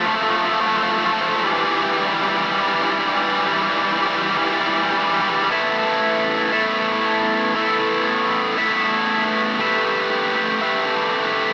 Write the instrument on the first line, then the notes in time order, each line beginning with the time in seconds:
distorted electric guitar
0.06 F3 A3
0.14 F3 A3
0.23 F3 A3
0.29 F3 A3
0.36 F3 A3
0.45 F3 A3
0.52 F3 A3
0.60 F3 A3
0.67 F3 A3
0.75 F3 A3
0.83 F3 A3
0.91 F3 A3
0.97 F3 A3
1.05 F3 A3
1.13 F3 A3
1.21 F3 A3
1.28 F3 A3
1.36 F3 A3
1.44 E3 G3
1.52 E3 G3
1.58 E3 G3
1.66 E3 G3
1.75 E3 G3
1.82 E3 G3
1.91 E3 G3
1.97 E3 G3
2.06 E3 G3
2.13 E3 G3
2.22 E3 G3
2.29 E3 G3
2.37 E3 G3
2.44 E3 G3
2.52 E3 G3
2.60 E3 G3
2.67 E3 G3
2.75 E3 G3
2.83 E3 G3
2.92 E3 G3
2.98 E3 G3
3.07 E3 G3
3.14 E3 G3
3.23 E3 G3
3.30 E3 G3
3.37 E3 G3
3.46 E3 G3
3.53 E3 G3
3.62 E3 G3
3.69 E3 G3
3.77 E3 G3
3.83 E3 G3
3.92 E3 G3
3.99 E3 G3
4.07 E3 G3
4.15 E3 G3
4.22 E3 G3
4.30 E3 G3
4.37 E3 G3
4.45 E3 G3
4.52 E3 G3
4.60 E3 G3
4.67 E3 G3
4.74 E3 G3
4.83 E3 G3
4.90 E3 G3
4.98 E3 G3
5.05 E3 G3
5.13 E3 G3
5.21 E3 G3
5.29 E3 G3
5.36 E3 G3
5.44 E3 G3
5.50 A3 B3 E4 A4 E5
6.52 A3 B3 E4 A4 E5
7.54 A3 B3 E4 A4 E5
8.58 A3 B3 E4 A4 E5
9.59 A3 G4 B4 E5
10.61 A3 G4 B4 E5